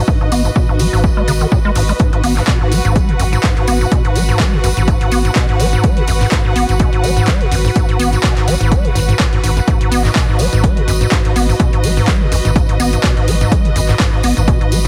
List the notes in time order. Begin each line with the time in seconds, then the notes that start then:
Already playing: F#4 B4 D#5
0.07 G#2, kick, tambourine
0.21 G#2
0.32 G#1 B3, open hi-hat, tambourine
0.45 G#2, tambourine
0.55 B2, kick, tambourine
0.69 G#2
0.79 G#1 G#3, open hi-hat, tambourine
0.93 G#1 G#2, tambourine
1.04 G#3, kick, tambourine
1.17 G#3
1.28 G#1 C#3, open hi-hat, tambourine
1.41 D#3, tambourine
1.51 A#2, kick, tambourine
1.65 G#3
1.75 G#1 G#2, open hi-hat, tambourine
1.89 G#3, tambourine
1.99 G#2, kick, closed hi-hat, tambourine
2.13 G#2, closed hi-hat
2.24 G#1 B3, open hi-hat, tambourine
2.28 F#5
2.37 G#2, clap, tambourine
2.48 B2, kick, clap, closed hi-hat
2.61 G#2
2.72 G#1 G#3, open hi-hat, tambourine
2.85 G#1 G#2, closed hi-hat, tambourine
2.96 G#3, kick, closed hi-hat, tambourine
3.09 A#2, closed hi-hat
3.19 G#1 F#2, open hi-hat, tambourine
3.33 G#2, closed hi-hat, tambourine
3.43 G#2, kick, clap, closed hi-hat
3.57 G#2, closed hi-hat
3.67 G#1 B3, open hi-hat, tambourine
3.81 G#2, tambourine
3.92 B2, kick, closed hi-hat, tambourine
4.05 G#2, closed hi-hat
4.16 G#1 G#3, open hi-hat, tambourine
4.29 G#2, tambourine
4.40 G#3, kick, clap, closed hi-hat
4.53 A#2
4.64 G#1 F#2, open hi-hat, tambourine
4.77 G#1 G#2, closed hi-hat, tambourine
4.88 G#2, kick, closed hi-hat, tambourine
5.01 G#2, closed hi-hat
5.11 G#1 B3, open hi-hat, tambourine
5.25 G#2, closed hi-hat, tambourine
5.36 B2, kick, clap, closed hi-hat
5.49 G#2, closed hi-hat
5.60 G#1 G#3, open hi-hat, tambourine
5.73 G#2, closed hi-hat, tambourine
5.84 G#3, kick, closed hi-hat, tambourine
5.97 A#2, closed hi-hat
6.07 G#1 F#2, open hi-hat, tambourine
6.21 G#2, clap, tambourine
6.32 G#2, kick, clap, closed hi-hat
6.45 G#2
6.56 G#1 B3, open hi-hat, tambourine
6.69 G#1 G#2, closed hi-hat, tambourine
6.79 B2, kick, closed hi-hat, tambourine
6.93 G#2, closed hi-hat
7.04 G#1 G#3, open hi-hat, tambourine
7.16 G#2, closed hi-hat, tambourine
7.27 G#3, kick, clap, closed hi-hat, tambourine
7.41 A#2, closed hi-hat
7.51 G#1 F#2, open hi-hat, tambourine
7.65 G#2, tambourine
7.76 G#2, kick, closed hi-hat, tambourine
7.89 G#2, closed hi-hat
7.99 G#1 B3, open hi-hat, tambourine
8.13 G#2, closed hi-hat, tambourine
8.23 B2, kick, clap, closed hi-hat
8.37 G#2, clap, closed hi-hat
8.47 G#1 G#3, open hi-hat, tambourine
8.60 G#1 G#2, closed hi-hat, tambourine
8.71 G#3, kick, closed hi-hat, tambourine
8.85 A#2, closed hi-hat
8.95 G#1 G#2, open hi-hat, tambourine
9.09 G#2, closed hi-hat, tambourine
9.20 A#2, kick, clap, closed hi-hat
9.33 G#2, closed hi-hat
9.44 G#1 G#2, open hi-hat, tambourine
9.57 F#2, closed hi-hat, tambourine
9.68 G#2, kick, closed hi-hat, tambourine
9.81 G#2, closed hi-hat
9.91 G#1 B3, open hi-hat, tambourine
9.96 D#5
10.05 G#2, clap, tambourine
10.16 B2, kick, clap, closed hi-hat
10.29 G#2
10.39 G#1 G#3, open hi-hat, tambourine
10.52 G#1 G#2, closed hi-hat, tambourine
10.64 G#3, kick, closed hi-hat, tambourine
10.77 A#2, closed hi-hat
10.88 G#1 F#2, open hi-hat, tambourine
11.01 G#2, closed hi-hat, tambourine
11.11 G#2, kick, clap, closed hi-hat, tambourine
11.25 G#2, closed hi-hat
11.36 G#1 B3, open hi-hat, tambourine
11.49 G#2, tambourine
11.59 B2, kick, closed hi-hat, tambourine
11.73 G#2, closed hi-hat
11.84 G#1 G#3, open hi-hat, tambourine
11.97 G#2, tambourine
12.08 G#3, kick, clap, closed hi-hat, tambourine
12.21 A#2
12.32 G#1 F#2, open hi-hat, tambourine
12.45 G#1 G#2, closed hi-hat, tambourine
12.55 G#2, kick, closed hi-hat, tambourine
12.69 G#2, closed hi-hat
12.80 G#1 B3, open hi-hat, tambourine
12.93 G#2, closed hi-hat, tambourine
13.04 B2, kick, clap, closed hi-hat
13.17 G#2, closed hi-hat
13.28 G#1 G#3, open hi-hat, tambourine
13.41 G#2, closed hi-hat, tambourine
13.52 G#3, kick, closed hi-hat, tambourine
13.65 A#2, closed hi-hat
13.76 G#1 F#2, open hi-hat, tambourine
13.89 G#2, clap, tambourine
14.00 G#2, kick, clap, closed hi-hat, tambourine
14.13 G#2
14.23 G#1 B3, open hi-hat, tambourine
14.37 G#1 G#2, closed hi-hat, tambourine
14.48 B2, kick, closed hi-hat, tambourine
14.61 G#2, closed hi-hat
14.72 G#1 G#3, open hi-hat, tambourine